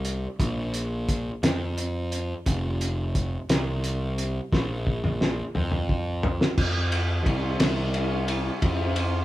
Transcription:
Already playing: C2
0.05 closed hi-hat
0.39 A#1, kick, closed hi-hat
0.74 closed hi-hat
1.09 kick, closed hi-hat
1.43 F2, snare, closed hi-hat
1.78 closed hi-hat
2.12 closed hi-hat
2.46 F1, kick, closed hi-hat
2.81 closed hi-hat
3.15 kick, closed hi-hat
3.49 C2, snare, closed hi-hat
3.84 closed hi-hat
4.18 closed hi-hat
4.52 A#1, kick, snare
4.87 kick
5.04 mid tom
5.21 snare
5.55 F2, mid tom
5.72 mid tom
5.89 kick
6.23 floor tom
6.41 snare
6.57 F2, kick, crash
6.92 ride
7.26 C2, kick, ride
7.60 C2, snare, ride
7.94 ride
8.28 ride
8.62 F2, kick, ride
8.96 ride

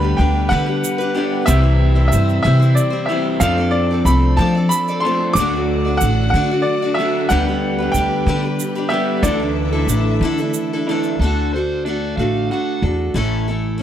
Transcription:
Already playing: D2 D3 G3 B3 D4 G4 B4 B5
0.02 D4 G4 B4
0.17 D2 G3 D4 G4 B4 G5
0.49 D3 G3 D4 G4 B4 F#5
0.66 D4 G4 B4
0.84 shaker
0.98 G4 B4, shaker
1.02 D4
1.14 D3 G3 B3 D4 G4 B4
1.46 C2 C3 E3 G3 C4 E4 C5 E5, shaker
1.51 G4
1.62 G3 C4 E4 C5
1.95 G3 C4 E4 C5
2.08 G3 E5
2.12 G2 C4 E4 C5, shaker
2.29 shaker
2.43 C3 E3 G3 C4 E4 E5
2.47 C5
2.59 G3 C4 E4 C5, shaker
2.75 D5, shaker
2.90 G3 C4 E4 C5
3.06 G3 C4 G4 E5
3.10 C3 E3 E4 C5
3.40 F2 F3 A3 C4 D4 A4 D5 F5, shaker
3.58 C4 A4 D5
3.71 D5
3.91 C4 A4 D5
4.05 C2 A3 C4 A4 D5 B5, shaker
4.37 F3 A3 C4 A4 D5 A5
4.55 C4 A4 D5
4.69 B5, shaker
4.88 C4 A4 D5, shaker
5.00 D4 C6
5.05 F3 A3 C4 A4 D5
5.33 D2 F#3 D4 F#5 D6, shaker
5.38 D3 A3 D4 F#4 D5
5.53 D4 F#4 D5
5.85 D4 F#4 D5
5.97 A1 F#5, shaker
6.01 A3 D4 F#4 D5
6.30 D3 F#5
6.34 D3 A3 D4 F#4 D5
6.51 D4 F#4 D5
6.62 D5
6.82 D4 F#4 D5
6.94 E5
6.99 D3 F#3 A3 D4 F#4 D5
7.29 D2 D3 G3 B3 D4 G4 B4 F#5, shaker
7.47 D4 G4 B4
7.79 D4 G4 B4
7.92 D2 G5, shaker
7.96 G3 D4 G4 B4
8.26 D3 G3 D4 G4 B4
8.43 D4 G4 B4
8.60 shaker
8.75 D4 G4 B4, shaker
8.89 G3 B3 D4 E5
8.93 D3 G4 B4
9.23 D2 D3 E3 A3 D4 E4 A4 D5 E5, shaker
9.40 D4 E4 A4
9.72 D4 E4 A4
9.87 A1 A3 D4 E4, shaker
9.92 A4
10.21 D3 A3 D4 E4
10.25 A4
10.38 E4 A4, shaker
10.43 D4
10.54 shaker
10.73 D4 E4 A4
10.89 D3 E3 A3 D4 E4 A4
11.03 shaker
11.19 D2 D3 A3 A4
11.23 D4 F#4 A4
11.54 D4 F#4 A4 C5
11.86 A3 D4 F#4 A4 D5
12.17 A1 A3 D4 F#4 A4 F5
12.22 D3
12.51 A3 D4 F#4 A4 F#5
12.82 E2 D4 F#4 A4
13.14 A1 A2 E3 A3 C#4 E4 A4
13.48 A3 C#4 E4 A4
13.78 A3 C#4

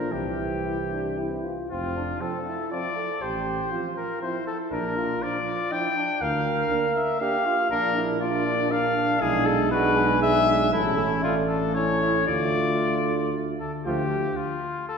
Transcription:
Already playing: A#1 F3 D4 A#4
0.11 C2 E3 C4 E4 G4
0.65 E4
0.92 D4
1.18 E4
1.45 F4
1.70 F1 C4 F4
1.96 D4
2.21 F3 C4 A4
2.46 E4
2.71 F3 C4 F4 D5
2.96 A4
3.21 A1 G4 C5
3.71 F3 C4 F4
3.97 A#4
4.21 F3 C4 E4 C5
4.47 A4
4.71 A#1 D4 A#4
4.97 F4
5.22 F3 D4 D5
5.72 F3 D4 E4 G5
5.96 D4
6.21 D2 A#4 F5
6.71 A#3 D4
6.96 E5
7.20 A#3 D4 G4 F5
7.46 F4
7.70 A#1 A#3 D4 A#4
7.96 E4
8.20 A#3 D4 F4 D5
8.46 D4
8.70 A#3 D4 F5
8.96 D4
9.21 B1 G#3 D4 E4 G#4
9.46 A4
9.71 G#3 D4 F#4 B4
9.97 G#4
10.22 G#3 D4 E5
10.73 A1 A3 C#4 E4 A4
10.97 C#4
11.23 A3 D4 F4
11.48 A4
11.75 A3 C#4 E4 C#5
12.01 E4
12.27 D2 A3 F4 D5
13.60 A4
13.85 D2 F3 A3 F4 G4
14.36 F4
14.89 A4

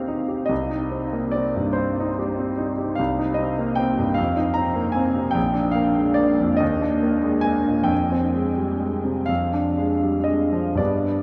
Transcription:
Already playing: D#2 D#3 A#3 C4 D#4 G4 F5 G5
0.08 D#4
0.28 G4
0.46 C2 D#5
0.70 D#4
0.92 C4
1.13 A#3
1.31 C4 D5
1.56 G2
1.73 C4 C5
2.00 D#4
2.19 G4
2.39 C4
2.58 D#4
2.78 G4
2.95 C2 F5
3.19 D#4
3.34 C4 D#5
3.59 A#3
3.75 C4 G5
3.99 G2
4.14 F2 F5
4.37 D#4
4.54 C4 A#5
4.76 A#3
4.92 G#5
4.96 C4
5.16 C3
5.31 A#1 G5
5.54 D4
5.71 A#3 F5
5.97 G#3
6.14 A#3 D5
6.40 F2
6.57 D#2 D#5
6.82 D4
7.03 A#3
7.23 G#3
7.41 A#3 G#5
7.67 A#2
7.83 F2 G5
8.12 C4
8.34 G#3
8.58 G3
8.81 G#3
9.04 C3
9.26 F2 F5
9.53 D4
9.77 G#3
10.03 G3
10.24 G#3 D#5
10.52 F3
10.75 G2 G3 B3 D5
10.80 D4

